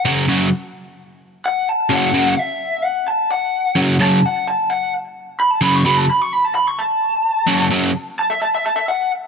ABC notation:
X:1
M:4/4
L:1/16
Q:1/4=129
K:F#m
V:1 name="Lead electric guitar"
z12 f2 a2 | f4 e4 f2 a2 f4 | z2 a2 f2 a2 f2 z4 b a | b c' b a b c' b a b c' a6- |
a2 z4 a e a e a e f2 z2 |]
V:2 name="Overdriven electric guitar" clef=bass
[F,,C,F,]2 [F,,C,F,]2 z12 | [F,,C,F,]2 [F,,C,F,]2 z12 | [F,,C,F,]2 [F,,C,F,]2 z12 | [F,,C,F,]2 [F,,C,F,]2 z12 |
[F,,C,F,]2 [F,,C,F,]2 z12 |]